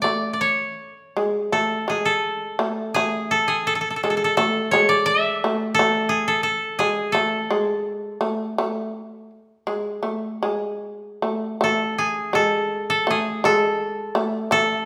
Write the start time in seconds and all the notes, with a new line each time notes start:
Already playing: C#4 A4
0.02 A3 D5
0.33 D5
0.41 C#5
1.17 G#3
1.52 A3 A4
1.88 G#3 G#4
2.05 A4
2.59 A3
2.94 A3 G#4
3.31 A4
3.48 G#4
3.67 A4
3.75 A4
3.81 A4
3.90 A4
3.96 A4
4.03 G#3 A4
4.10 A4
4.17 A4
4.24 A4
4.37 A3 A4
4.71 G#3 C#5
4.89 D5
5.06 E5
5.44 A3
5.75 A4
5.79 A3
6.09 G#4
6.28 A4
6.43 A4
6.79 G#3 G#4
7.12 A3 A4
7.51 G#3
8.21 A3
8.58 A3
9.67 G#3
10.03 A3
10.43 G#3
11.22 A3
11.61 A3 A4
11.98 G#4
12.33 G#3 A4
12.90 A4
13.07 A3 G#4
13.44 G#3 A4
14.15 A3
14.51 A3 A4